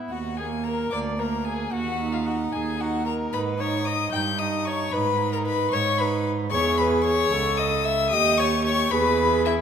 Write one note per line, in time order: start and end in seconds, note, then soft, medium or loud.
0.00 0.10 B3 soft
0.00 0.12 E4 soft
0.11 0.82 D#2 medium
0.11 0.37 F#4 medium
0.11 0.38 F#5 medium
0.37 0.91 A#3 soft
0.37 0.46 G#4 medium
0.37 0.65 G#5 medium
0.63 0.94 A#4 medium
0.63 0.90 A#5 medium
0.91 1.63 D2 medium
0.91 1.18 A#3 soft
0.91 1.21 D5 medium
0.91 0.99 D6 medium
1.18 1.72 A#3 soft
1.18 1.46 A#4 medium
1.18 1.46 A#5 medium
1.45 1.72 G#4 medium
1.45 1.73 G#5 medium
1.72 2.44 D#2 medium
1.72 2.14 F#4 medium
1.72 2.14 F#5 medium
2.00 2.78 D#4 medium
2.13 2.26 F4 medium
2.13 2.27 F5 medium
2.26 2.34 F#4 medium
2.26 2.54 F#5 medium
2.53 3.23 D#2 medium
2.53 2.82 G#4 medium
2.53 2.82 G#5 medium
2.79 3.32 D#4 soft
2.79 3.06 F#4 medium
2.79 3.05 F#5 medium
3.06 3.34 A#4 medium
3.06 3.14 A#5 medium
3.32 4.04 G#2 medium
3.32 3.58 D#4 medium
3.32 3.62 B4 medium
3.32 3.41 B5 medium
3.59 4.12 D#4 medium
3.59 3.88 C#5 medium
3.59 3.86 C#6 medium
3.85 4.13 D#5 medium
3.85 4.12 D#6 medium
4.12 4.83 G2 medium
4.12 4.39 D#4 soft
4.12 4.21 G5 medium
4.12 4.40 G6 medium
4.39 4.92 D#4 medium
4.39 4.68 D#5 medium
4.39 4.67 D#6 medium
4.65 4.95 C#5 medium
4.65 4.93 C#6 medium
4.92 5.63 G#2 medium
4.92 5.19 D#4 medium
4.92 5.34 B4 medium
4.92 5.32 B5 medium
5.20 5.98 D#4 medium
5.33 5.46 A#4 medium
5.33 5.38 A#5 medium
5.46 5.74 B4 medium
5.46 5.71 B5 loud
5.71 6.43 G#2 medium
5.71 6.02 C#5 medium
5.71 6.00 C#6 medium
5.98 6.51 D#4 medium
5.98 6.27 B4 medium
5.98 6.25 B5 medium
6.51 7.28 E2 medium
6.51 7.34 G#4 medium
6.51 6.77 C#5 medium
6.51 6.79 C#6 loud
6.78 7.05 B4 medium
6.78 7.04 B5 medium
7.04 7.60 C#5 medium
7.04 7.58 C#6 loud
7.32 8.13 C#2 medium
7.32 8.11 A4 medium
7.57 7.87 D#5 medium
7.57 7.86 D#6 loud
7.84 8.15 E5 medium
7.84 8.10 E6 loud
8.10 8.91 D#2 medium
8.10 8.93 G4 medium
8.10 8.40 D#5 loud
8.10 8.39 D#6 loud
8.38 8.65 C#5 medium
8.38 8.64 C#6 loud
8.65 8.92 C#5 medium
8.65 8.92 C#6 loud
8.91 9.61 E2 medium
8.91 9.61 G#4 medium
8.91 9.48 B4 loud
8.91 9.44 B5 loud
9.45 9.61 E4 medium
9.45 9.53 E5 medium